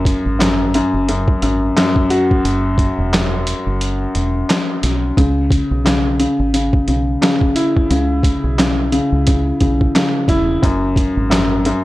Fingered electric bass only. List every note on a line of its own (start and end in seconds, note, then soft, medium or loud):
0.00 0.15 F#1 loud
0.26 0.80 G#1 medium
0.94 1.33 F#1 medium
1.42 1.70 G#1 medium
2.45 2.88 F#1 loud
2.98 3.53 E1 medium
3.67 4.05 F#1 medium
4.15 4.42 E1 medium
4.84 5.11 B1 medium
5.18 5.60 C#2 loud
5.71 6.25 B1 medium
6.39 6.78 G#1 medium
6.88 7.15 B1 medium
7.90 8.33 C#2 loud
8.44 8.98 B1 medium
9.12 9.51 C#2 medium
9.61 9.88 B1 medium
10.28 10.56 E1 medium
10.63 11.06 F#1 loud
11.17 11.71 G#1 medium